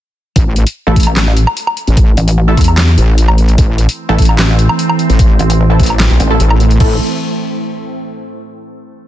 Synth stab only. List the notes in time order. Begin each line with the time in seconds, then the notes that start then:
0.87 A3 E4 A4
2.48 A3 E4 A4
4.09 A3 E4 A4
5.70 A3 E4 A4
6.30 A3 E4 A4
6.80 A3 E4 A4